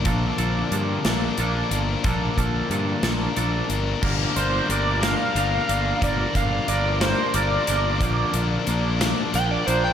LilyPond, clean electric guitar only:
\new Staff \with { instrumentName = "Clean electric guitar" } { \time 6/8 \key g \minor \tempo 4. = 60 <f bes d' a'>8 <f bes d' a'>8 <f bes d' a'>8 <f bes d' a'>8 <f bes d' a'>8 r8 | <f bes d' a'>8 <f bes d' a'>8 <f bes d' a'>8 <f bes d' a'>8 <f bes d' a'>8 r8 | <g, d f bes d' bes'>8 <f bes d' bes'>8 <f bes d' bes'>8 <f bes d' bes'>8 <f bes d' bes'>8 <f bes d' bes'>8 | <g, d f bes d' bes'>8 <f bes d' bes'>8 <f bes d' bes'>8 <f bes d' bes'>8 <f bes d' bes'>8 <f bes d' bes'>8 |
<bes, d f bes d'>8 <f bes d'>8 <f bes d'>8 <f bes d'>8 <f bes d'>8 <f bes d'>8 | }